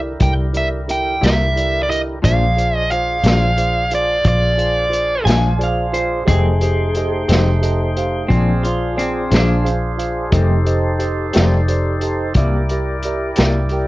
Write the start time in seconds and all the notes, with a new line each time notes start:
Already playing: C2 D3 E4 G4 A#4 D5
0.20 C2 E4 G4 A#4 D5 G5, kick, closed hi-hat
0.53 E4 G4 A#4 D5, closed hi-hat
0.57 E5
0.88 E4 G4 A#4 E5 G5, closed hi-hat
1.21 C2 C3 G3 A#3 E4 G4 A#4 D5 E5, closed hi-hat
1.26 snare
1.56 E4 G4 A#4 D5, closed hi-hat
1.83 D5
1.89 E4 G4 A#4 D#5 E5, closed hi-hat
2.22 A#1 A#2 F3 G#3 D4 F4 G#4 C5 D5 F5, kick, closed hi-hat
2.56 F4 G#4 C5 D5, closed hi-hat
2.77 D#5
2.91 F4 G#4 C5 F5, closed hi-hat
3.24 A#1 A#2 F3 G#3 D4 F4 G#4 C5 D5, snare, closed hi-hat
3.57 F4 G#4 C5 D5, closed hi-hat
3.91 F4 G#4 C5 F5, closed hi-hat
3.95 D5
4.25 A#1 F4 G#4 C5 D5 F5, kick, closed hi-hat
4.57 F4 G#4 C5 F5, closed hi-hat
4.89 F4 G#4 C5 D5, closed hi-hat
5.25 A#1 A#2 F3 G#3 D4 F4 G#4 C5 F5 G#5, closed hi-hat
5.29 snare
5.58 F4 G#4 C5 D5, closed hi-hat
5.64 F5
5.93 F4 G#4 C5 F5, closed hi-hat
6.25 F1 F2 D#3 A3 C4 D#4 G4 G#4 A4 C5 D#5 G5, kick, closed hi-hat
6.61 G4 A4 C5 D#5, closed hi-hat
6.95 G4 A4 C5 D#5, closed hi-hat
7.28 F1 F2 D#3 A3 C4 G4 A4 C5 D#5, snare, closed hi-hat
7.62 G4 A4 C5 D#5, closed hi-hat
7.96 G4 A4 C5 F5, closed hi-hat
8.28 A#1 A#2 F3 G#3 C4 D4 F4 G#4 C5 D5, kick, closed hi-hat
8.63 F4 G#4 C5 D5, closed hi-hat
8.96 C4 F4 G#4 C5 D5, closed hi-hat
9.31 A#1 A#2 F3 G#3 D4 F4 G#4 C5 F5, snare, closed hi-hat
9.35 D4
9.64 F4 G#4 C5 F5, closed hi-hat
9.97 F4 G#4 C5 F5, closed hi-hat
10.31 F1 F2 D#3 A3 C4 D#4 G4 A4 C5 D#5, kick, closed hi-hat
10.65 G4 A4 C5 D#5, closed hi-hat
10.99 G4 A4 C5 D#5, closed hi-hat
11.33 F1 F2 D#3 A3 C4 G4 A4 C5 D5, snare, closed hi-hat
11.68 G4 A4 C5 D5, closed hi-hat
12.01 G4 A4 C5 D#5, closed hi-hat
12.34 C2 C3 G3 A#3 E4 G4 A#4 D5 E5, kick, closed hi-hat
12.69 G4 A#4 D5 E5, closed hi-hat
13.03 G4 A#4 D5 E5, closed hi-hat
13.36 C2 C3 G3 A#3 E4 G4 A#4 D5 G5, snare, closed hi-hat
13.69 G4 A#4 D5 G5, closed hi-hat